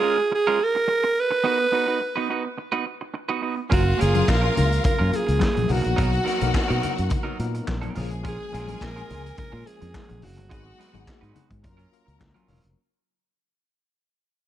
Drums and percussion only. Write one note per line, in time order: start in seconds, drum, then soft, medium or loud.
3.72 kick loud
3.72 closed hi-hat medium
3.72 muted conga soft
4.01 closed hi-hat medium
4.15 closed hi-hat soft
4.15 high conga medium
4.28 kick loud
4.28 snare loud
4.28 clap medium
4.57 closed hi-hat medium
4.57 muted conga soft
4.57 low conga medium
4.72 closed hi-hat soft
4.84 kick loud
4.84 closed hi-hat medium
4.84 low conga medium
5.13 closed hi-hat medium
5.13 muted conga soft
5.28 closed hi-hat soft
5.40 kick loud
5.40 snare loud
5.40 clap medium
5.40 muted conga soft
5.40 high conga medium
5.57 closed hi-hat soft
5.57 high conga medium
5.69 open hi-hat medium
5.69 muted conga soft
5.69 low conga medium
5.84 closed hi-hat soft
5.98 kick loud
5.98 closed hi-hat medium
6.13 closed hi-hat soft
6.27 snare soft
6.27 closed hi-hat medium
6.27 muted conga soft
6.41 closed hi-hat soft
6.41 high conga medium
6.54 kick loud
6.54 snare loud
6.54 clap loud
6.70 closed hi-hat soft
6.83 closed hi-hat medium
6.83 muted conga soft
6.83 low conga medium
6.98 closed hi-hat soft
7.10 kick loud
7.10 closed hi-hat medium
7.10 muted conga soft
7.10 low conga medium
7.39 closed hi-hat medium
7.39 muted conga soft
7.55 closed hi-hat soft
7.68 kick loud
7.68 snare loud
7.68 clap medium
7.68 high conga medium
7.83 closed hi-hat soft
7.83 high conga medium
7.95 open hi-hat medium
7.95 muted conga soft
7.95 low conga medium
8.11 closed hi-hat soft
8.24 kick loud
8.24 closed hi-hat medium
8.52 snare soft
8.52 closed hi-hat medium
8.52 muted conga soft
8.68 closed hi-hat soft
8.68 high conga medium
8.81 kick loud
8.81 snare loud
8.81 clap loud
8.81 muted conga soft
8.97 closed hi-hat soft
9.10 closed hi-hat medium
9.10 muted conga soft
9.10 low conga medium
9.26 closed hi-hat soft
9.37 kick loud
9.37 closed hi-hat medium
9.37 muted conga soft
9.37 low conga medium
9.67 closed hi-hat medium
9.81 closed hi-hat soft
9.94 kick loud
9.94 snare loud
9.94 clap loud
9.94 high conga medium
10.09 closed hi-hat soft
10.09 high conga medium
10.22 open hi-hat medium
10.22 low conga medium
10.38 closed hi-hat soft
10.51 kick loud
10.51 closed hi-hat medium
10.79 snare soft
10.79 closed hi-hat medium
10.79 muted conga soft
10.94 closed hi-hat soft
10.94 high conga medium
11.07 kick loud
11.07 snare loud
11.07 clap loud
11.07 muted conga soft
11.23 closed hi-hat soft
11.35 closed hi-hat medium
11.35 muted conga soft
11.35 low conga medium
11.51 kick loud
11.51 closed hi-hat soft
11.64 kick loud
11.64 closed hi-hat medium
11.64 low conga medium
11.79 closed hi-hat soft
11.93 closed hi-hat medium
12.08 closed hi-hat soft
12.20 kick loud
12.20 snare loud
12.20 clap loud
12.20 muted conga soft
12.20 high conga medium
12.35 closed hi-hat soft
12.35 high conga medium
12.48 open hi-hat medium
12.48 muted conga soft
12.48 low conga medium
12.64 closed hi-hat soft